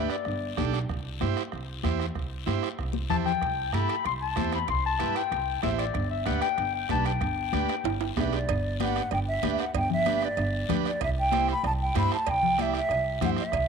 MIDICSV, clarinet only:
0, 0, Header, 1, 2, 480
1, 0, Start_track
1, 0, Key_signature, 1, "major"
1, 0, Tempo, 315956
1, 1354, Time_signature, 4, 2, 24, 8
1, 20783, End_track
2, 0, Start_track
2, 0, Title_t, "Clarinet"
2, 0, Program_c, 0, 71
2, 165, Note_on_c, 0, 74, 74
2, 830, Note_off_c, 0, 74, 0
2, 4711, Note_on_c, 0, 81, 91
2, 4820, Note_off_c, 0, 81, 0
2, 4953, Note_on_c, 0, 79, 93
2, 5679, Note_on_c, 0, 83, 96
2, 5701, Note_off_c, 0, 79, 0
2, 6157, Note_off_c, 0, 83, 0
2, 6178, Note_on_c, 0, 84, 94
2, 6281, Note_off_c, 0, 84, 0
2, 6413, Note_on_c, 0, 81, 90
2, 6852, Note_off_c, 0, 81, 0
2, 6910, Note_on_c, 0, 83, 88
2, 7118, Note_off_c, 0, 83, 0
2, 7142, Note_on_c, 0, 84, 102
2, 7354, Note_off_c, 0, 84, 0
2, 7388, Note_on_c, 0, 81, 90
2, 7821, Note_off_c, 0, 81, 0
2, 7854, Note_on_c, 0, 79, 95
2, 8517, Note_off_c, 0, 79, 0
2, 8556, Note_on_c, 0, 76, 85
2, 8665, Note_off_c, 0, 76, 0
2, 8802, Note_on_c, 0, 74, 85
2, 9247, Note_off_c, 0, 74, 0
2, 9283, Note_on_c, 0, 76, 78
2, 9516, Note_on_c, 0, 78, 82
2, 9539, Note_off_c, 0, 76, 0
2, 9743, Note_off_c, 0, 78, 0
2, 9752, Note_on_c, 0, 79, 99
2, 10202, Note_off_c, 0, 79, 0
2, 10249, Note_on_c, 0, 79, 73
2, 10468, Note_off_c, 0, 79, 0
2, 10499, Note_on_c, 0, 81, 98
2, 10713, Note_off_c, 0, 81, 0
2, 10736, Note_on_c, 0, 79, 85
2, 12348, Note_off_c, 0, 79, 0
2, 20783, End_track
0, 0, End_of_file